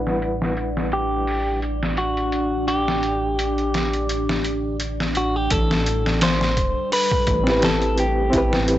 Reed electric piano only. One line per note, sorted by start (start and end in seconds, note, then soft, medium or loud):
0.00 5.48 G3 medium
0.00 5.45 E4 medium
0.00 5.49 B4 medium
0.00 5.46 F#5 medium
7.44 8.28 C4 medium
7.44 8.29 E4 medium
7.49 8.30 G4 medium
7.49 8.32 B4 medium
8.30 8.79 C4 medium
8.30 8.79 E4 medium
8.35 8.79 G4 medium
8.35 8.79 B4 medium